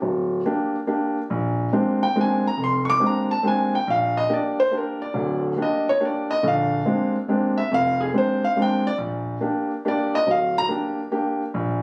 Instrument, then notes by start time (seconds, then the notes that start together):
grand piano
0.02 D1
0.46 A#3 D4 G4
0.87 A#3 D4 G4
1.30 A#1
1.72 G#3 A#3 C4 D4 G4
2.03 G5
2.15 G#3 A#3 C4 D4 G4
2.21 G#5
2.47 A#5
2.57 F1
2.64 C6
2.85 C#6
2.90 D6
3.00 G#3 A#3 C4 D4 G4
3.06 A#5
3.31 A5
3.43 G#3 A#3 C4 D4 G4
3.48 G#5
3.75 G5
3.87 A#1 F5
4.17 D#5
4.29 A#3 D4 G4
4.34 D5
4.60 C5
4.71 A#3 D4 G4
4.77 A#4
5.02 D5
5.14 D1 D2
5.56 A#3 D4 G4
5.62 D#5
5.89 C#5
6.00 A#3 D4 G4
6.05 D5
6.31 D#5
6.43 A#1 D3
6.48 F5
6.86 G#3 A#3 C4 D4 G4
7.28 G#3 A#3 C4 D4 G4
7.58 E5
7.71 F1 F2 F5
8.01 G#4
8.14 G#3 A#3 C4 D4 G4
8.18 C5
8.45 F5
8.56 G#3 A#3 C4 D4 G4
8.62 G5
8.87 D5
8.98 A#1
9.41 A#3 D4 G4
9.85 A#3 D4 G4 D5
10.15 D#5
10.27 D1 F5
10.58 A#5
10.68 A#3 D4 G4
11.11 A#3 D4 G4
11.54 A#1